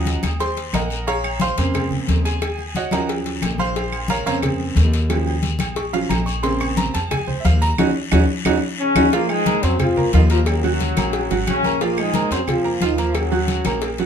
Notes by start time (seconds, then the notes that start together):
Already playing: D#2 F3 F#3 C#4 D#5 F#5 A#5 D#6
0.05 cowbell, high conga, short guiro
0.23 D#2, cowbell, high conga, low agogo, short guiro, claves
0.40 C5 C6, cowbell, high conga, low agogo, long guiro
0.56 cowbell, high conga
0.73 A#1 A#4 D#5 F#5 A#5, cowbell, high conga, low timbale, low agogo, short guiro, claves
0.90 low agogo, short guiro
1.07 C#5 F5 A#5 C#6, cowbell, high conga, low agogo, long guiro
1.24 high conga, low agogo, claves
1.40 C5 F5 C6, cowbell, high conga, short guiro
1.57 F2 C#3 A#3 C4, cowbell, low agogo, short guiro
1.74 cowbell, high conga, low conga, low agogo, long guiro, claves
1.91 high conga, low conga
2.08 D#2, cowbell, high conga, low timbale, low agogo, short guiro
2.25 G#4 G#5, cowbell, high conga, short guiro
2.41 cowbell, high conga, low agogo, long guiro, claves
2.58 high conga, low agogo
2.75 F#4 C#5 D#5 F#5, cowbell, high conga, short guiro
2.91 D#2 F3 F#3 C#4 A#4 D#5 F#5 A#5, cowbell, high conga, low agogo, short guiro, claves
3.08 cowbell, high conga, low agogo, long guiro
3.25 cowbell, high conga
3.42 A#1, cowbell, high conga, low timbale, low agogo, short guiro, claves
3.58 C5 F5 C6, high conga, low agogo, short guiro
3.75 cowbell, high conga, low agogo, long guiro
3.92 high conga, low agogo, claves
4.08 A#4 C#5 F5 A#5, cowbell, high conga, short guiro
4.26 F2 C#3 A#3 C4 C#5 F5 A#5 C#6, cowbell, low agogo, short guiro
4.42 cowbell, high conga, low conga, low agogo, long guiro, claves
4.59 high conga
4.75 D#2, cowbell, high conga, low timbale, low agogo, short guiro
4.92 cowbell, high conga, short guiro
5.09 F3 F#3 C#4, cowbell, high conga, low agogo, long guiro, claves
5.26 high conga, low agogo
5.42 cowbell, high conga, short guiro
5.59 A#1, cowbell, high conga, low agogo, short guiro, claves
5.76 C#6, cowbell, high conga, low agogo, long guiro
5.93 F3 F#3 C#4 F5, cowbell, high conga
6.09 A#1 A#5, cowbell, high conga, low timbale, low agogo, short guiro, claves
6.26 C#6, low agogo, short guiro
6.42 C#3 A#3 C4 C6, cowbell, high conga, low agogo, long guiro
6.60 C#6, high conga, low agogo, claves
6.77 A#5, cowbell, high conga, short guiro
6.94 F2 A5, cowbell, low agogo, short guiro
7.11 G#5, cowbell, high conga, low conga, low agogo, long guiro, claves
7.27 C5, high conga, low conga
7.40 E5
7.45 D#2 F5, cowbell, high conga, low agogo, short guiro
7.61 A#5, cowbell, high conga, short guiro
7.78 D#2 C#4 D#4 F#4, cowbell, high conga, high timbale, long guiro, claves
8.12 D#2 C#4 D#4 F#4, cowbell, high conga, high timbale, long guiro, claves
8.45 D#2 C#4 D#4 F#4, cowbell, high conga, high timbale, long guiro, claves
8.80 C#3 C#4
8.95 D#2 C#4 D#4 F#4, cowbell, high conga, high timbale, long guiro, claves
9.12 A#2 F3 A#3 F4 F5, cowbell, high conga, low agogo, long guiro
9.29 G#2 G#3, high conga, low agogo, claves
9.46 A#3 A#4 A#5, cowbell, high conga, short guiro
9.63 F2 F#2 F#3 C4 C5 C6, cowbell, low agogo, short guiro
9.79 F3 F4, cowbell, high conga, low conga, low agogo, long guiro, claves
9.96 A#3 A#4 A#5, high conga, low conga
10.13 D#2 D#3 F3 D#4 F4 F5, cowbell, high conga, low timbale, low agogo, short guiro
10.30 F3 A#3 F4 A#4 A#5, cowbell, short guiro
10.46 F#2 F#3, cowbell, high conga, low agogo, long guiro, claves
10.64 F#3 F#4 F#5, high conga, low agogo
10.80 cowbell, high conga, short guiro
10.96 A#1 A#3 A#4 A#5, cowbell, high conga, low agogo, short guiro, claves
11.13 cowbell, high conga, low agogo, long guiro
11.31 G#1 F#3 F#4 F#5, cowbell, high conga
11.47 A#1 C#3 C#4, cowbell, high conga, low agogo, short guiro, claves
11.63 A#3 A#4 A#5, high conga, low agogo, short guiro
11.80 A#2 F3 A#3 F4 F5, cowbell, high conga, low agogo, long guiro
11.97 G#2 G#3, high conga, low agogo, claves
12.14 A#3 A#4 A#5, cowbell, high conga, short guiro
12.31 F2 F#2 F#3 C4 C5 C6, cowbell, low agogo, short guiro
12.47 F3 F4, cowbell, high conga, low conga, low agogo, long guiro, claves
12.64 A#3 A#4 A#5, high conga
12.81 D#2 D#3 F3 D#4 F4 F5, cowbell, high conga, low agogo, short guiro
12.98 F3 A#3 F4 A#4 A#5, cowbell, high conga, short guiro
13.14 F#2 F#3, cowbell, high conga, low agogo, long guiro, claves
13.31 F#3 F#4 F#5, high conga, low agogo
13.48 cowbell, high conga, short guiro
13.65 A#1 A#3 A#4 A#5, cowbell, high conga, low agogo, short guiro, claves
13.81 cowbell, high conga, low agogo, long guiro
13.98 F#3 F#4 F#5, cowbell, high conga